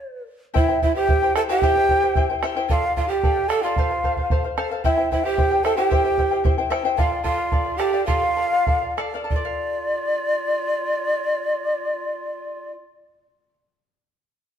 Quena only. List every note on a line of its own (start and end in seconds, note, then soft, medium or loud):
0.00 0.24 D5 medium
0.56 0.81 E5 medium
0.83 0.95 E5 medium
0.96 1.33 G5 loud
1.37 1.43 A5 loud
1.51 2.27 G5 loud
2.71 2.95 F5 medium
2.97 3.11 F5 medium
3.10 3.50 G5 loud
3.49 3.65 A5 medium
3.63 4.44 F5 medium
4.85 5.10 E5 medium
5.12 5.25 E5 medium
5.24 5.65 G5 loud
5.64 5.76 A5 loud
5.77 6.54 G5 loud
6.97 7.23 F5 medium
7.25 7.80 F5 medium
7.79 8.05 G5 medium
8.05 8.93 F5 loud
9.30 12.72 D5 loud